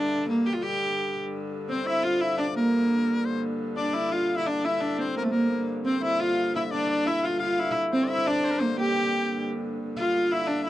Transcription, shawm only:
0, 0, Header, 1, 2, 480
1, 0, Start_track
1, 0, Tempo, 346220
1, 646, Time_signature, 6, 3, 24, 8
1, 14829, End_track
2, 0, Start_track
2, 0, Title_t, "Shawm"
2, 0, Program_c, 0, 111
2, 2355, Note_on_c, 0, 72, 71
2, 2594, Note_on_c, 0, 76, 82
2, 2615, Note_off_c, 0, 72, 0
2, 2826, Note_off_c, 0, 76, 0
2, 2842, Note_on_c, 0, 77, 74
2, 3054, Note_off_c, 0, 77, 0
2, 3082, Note_on_c, 0, 76, 78
2, 3327, Note_on_c, 0, 74, 77
2, 3348, Note_off_c, 0, 76, 0
2, 3548, Note_off_c, 0, 74, 0
2, 3557, Note_on_c, 0, 70, 77
2, 4505, Note_on_c, 0, 72, 64
2, 4526, Note_off_c, 0, 70, 0
2, 4745, Note_off_c, 0, 72, 0
2, 5218, Note_on_c, 0, 74, 74
2, 5668, Note_off_c, 0, 74, 0
2, 5705, Note_on_c, 0, 77, 69
2, 6063, Note_on_c, 0, 76, 70
2, 6083, Note_off_c, 0, 77, 0
2, 6186, Note_on_c, 0, 74, 69
2, 6207, Note_off_c, 0, 76, 0
2, 6427, Note_off_c, 0, 74, 0
2, 6444, Note_on_c, 0, 76, 75
2, 6882, Note_off_c, 0, 76, 0
2, 6923, Note_on_c, 0, 72, 71
2, 7139, Note_off_c, 0, 72, 0
2, 7168, Note_on_c, 0, 70, 70
2, 7249, Note_off_c, 0, 70, 0
2, 7364, Note_on_c, 0, 70, 65
2, 7843, Note_off_c, 0, 70, 0
2, 8122, Note_on_c, 0, 72, 69
2, 8338, Note_off_c, 0, 72, 0
2, 8370, Note_on_c, 0, 76, 80
2, 8602, Note_on_c, 0, 77, 82
2, 8623, Note_off_c, 0, 76, 0
2, 9074, Note_off_c, 0, 77, 0
2, 9080, Note_on_c, 0, 76, 70
2, 9304, Note_on_c, 0, 74, 82
2, 9325, Note_off_c, 0, 76, 0
2, 9544, Note_off_c, 0, 74, 0
2, 9563, Note_on_c, 0, 74, 65
2, 9777, Note_off_c, 0, 74, 0
2, 9787, Note_on_c, 0, 76, 84
2, 10009, Note_off_c, 0, 76, 0
2, 10025, Note_on_c, 0, 77, 70
2, 10243, Note_off_c, 0, 77, 0
2, 10251, Note_on_c, 0, 77, 82
2, 10702, Note_off_c, 0, 77, 0
2, 10974, Note_on_c, 0, 72, 74
2, 11215, Note_on_c, 0, 76, 82
2, 11236, Note_off_c, 0, 72, 0
2, 11461, Note_on_c, 0, 74, 78
2, 11481, Note_off_c, 0, 76, 0
2, 11710, Note_on_c, 0, 72, 83
2, 11731, Note_off_c, 0, 74, 0
2, 11794, Note_on_c, 0, 70, 68
2, 11815, Note_off_c, 0, 72, 0
2, 11896, Note_on_c, 0, 72, 74
2, 11917, Note_off_c, 0, 70, 0
2, 12173, Note_off_c, 0, 72, 0
2, 12181, Note_on_c, 0, 79, 73
2, 13078, Note_off_c, 0, 79, 0
2, 13867, Note_on_c, 0, 77, 82
2, 14334, Note_on_c, 0, 76, 73
2, 14355, Note_off_c, 0, 77, 0
2, 14799, Note_off_c, 0, 76, 0
2, 14829, End_track
0, 0, End_of_file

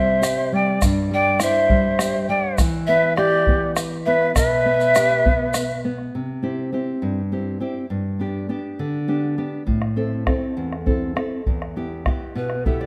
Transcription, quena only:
0, 0, Header, 1, 2, 480
1, 0, Start_track
1, 0, Tempo, 591716
1, 665, Time_signature, 6, 3, 24, 8
1, 10433, End_track
2, 0, Start_track
2, 0, Title_t, "Quena"
2, 0, Program_c, 0, 77
2, 0, Note_on_c, 0, 72, 74
2, 437, Note_on_c, 0, 74, 67
2, 449, Note_off_c, 0, 72, 0
2, 671, Note_off_c, 0, 74, 0
2, 925, Note_on_c, 0, 74, 76
2, 1138, Note_off_c, 0, 74, 0
2, 1159, Note_on_c, 0, 72, 82
2, 1837, Note_off_c, 0, 72, 0
2, 1862, Note_on_c, 0, 74, 69
2, 2085, Note_off_c, 0, 74, 0
2, 2336, Note_on_c, 0, 71, 84
2, 2561, Note_off_c, 0, 71, 0
2, 2576, Note_on_c, 0, 67, 80
2, 3025, Note_off_c, 0, 67, 0
2, 3295, Note_on_c, 0, 71, 88
2, 3520, Note_off_c, 0, 71, 0
2, 3531, Note_on_c, 0, 71, 84
2, 4701, Note_off_c, 0, 71, 0
2, 10433, End_track
0, 0, End_of_file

